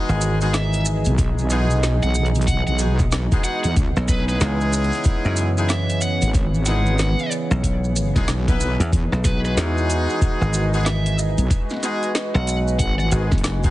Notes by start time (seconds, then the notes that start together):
Already playing: E3 G#3 B3 D#4 F#4 G#4 B4 C#5 D#5 G#5
0.09 G#1, maracas
0.21 closed hi-hat, maracas
0.41 G#3 B3 D#4 F#4 G#4, closed hi-hat, maracas
0.54 E5, snare, closed hi-hat, maracas
0.73 closed hi-hat, maracas
0.85 maracas
1.05 B1, closed hi-hat, maracas
1.18 kick, closed hi-hat, maracas
1.39 maracas
1.50 G#3 B3 D#4 F#4 G#4, closed hi-hat, maracas
1.70 maracas
1.83 snare, closed hi-hat, maracas
2.03 B1 F#5, maracas
2.15 closed hi-hat, maracas
2.26 closed hi-hat
2.35 closed hi-hat, maracas
2.41 closed hi-hat
2.47 F#5, kick, closed hi-hat, maracas
2.67 B1 F#5, maracas
2.79 G#3 B3 D#4 F#4 G#4, closed hi-hat, maracas
2.99 kick, closed hi-hat, maracas
3.12 snare, closed hi-hat, maracas
3.32 G#3 B3 D#4 F#4 G#4, kick, closed hi-hat, maracas
3.44 G#3 B3 D#4 F#4 G#4 F#5, maracas
3.64 E2 F#5, closed hi-hat, maracas
3.76 C#2 C#3 E3 B3, kick, closed hi-hat, maracas
3.84 B4
3.96 B1 C#5, snare, maracas
4.08 G#3 B3 D#4 E4 G#4 B4, kick, snare, closed hi-hat, maracas
4.19 snare
4.29 B4 G#5, snare, maracas
4.35 snare
4.40 C#2, snare, closed hi-hat, maracas
4.61 maracas
4.73 closed hi-hat, maracas
4.84 closed hi-hat
4.92 closed hi-hat, maracas
5.04 kick, closed hi-hat, maracas
5.25 F#2, maracas
5.36 closed hi-hat, maracas
5.57 G#3 B3 D#4 E4 G#4, closed hi-hat, maracas
5.69 E5, snare, closed hi-hat, maracas
5.90 closed hi-hat, maracas
6.01 F#5, maracas
6.22 G#1, closed hi-hat, maracas
6.34 kick, closed hi-hat, maracas
6.54 maracas
6.66 G#3 B3 D#4 E4 G#4 F#5, closed hi-hat, maracas
6.86 maracas
6.98 snare, closed hi-hat, maracas
7.19 maracas
7.32 closed hi-hat, maracas
7.51 B1, maracas
7.64 kick, closed hi-hat, maracas
7.84 maracas
7.96 closed hi-hat, maracas
8.16 B1 G#3 B3 D#4 E4 G#4, kick, snare, closed hi-hat, maracas
8.28 B1, snare, closed hi-hat, maracas
8.48 B3 D#4 E4 B4, kick, closed hi-hat, maracas
8.60 maracas
8.80 E2, closed hi-hat, maracas
8.92 E2 E3 D#4 G#4, kick, closed hi-hat, maracas
9.12 B1, snare, maracas
9.24 G#3 B3 D#4 F#4 G#4 B4, kick, snare, closed hi-hat, maracas
9.45 B4, maracas
9.53 E2 D#5
9.57 snare, closed hi-hat, maracas
9.78 maracas
9.90 closed hi-hat, maracas
10.10 maracas
10.22 kick, closed hi-hat, maracas
10.41 G#1, maracas
10.54 closed hi-hat, maracas
10.73 G#3 B3 D#4 F#4 G#4, closed hi-hat, maracas
10.85 E5, snare, closed hi-hat, maracas
11.06 closed hi-hat, maracas
11.19 maracas
11.38 B1, closed hi-hat, maracas
11.50 G#3 F#4 B4, kick, closed hi-hat, maracas
11.70 snare, maracas
11.74 snare
11.77 snare
11.80 G#3 B3 D#4 F#4 G#4, snare
11.83 snare, closed hi-hat, maracas
12.03 closed hi-hat, maracas
12.15 snare, closed hi-hat, maracas
12.35 B1 F#5, maracas
12.47 closed hi-hat, maracas
12.68 maracas
12.79 G#1 F#5, kick, closed hi-hat, maracas
12.99 F#5, maracas
13.11 G#1 G#3 B3 D#4 F#4 G#4, closed hi-hat, maracas
13.31 F#1, kick, snare, maracas
13.38 closed hi-hat
13.44 snare, closed hi-hat, maracas
13.63 G#3 B3 D#4 F#4 G#4, kick, closed hi-hat, maracas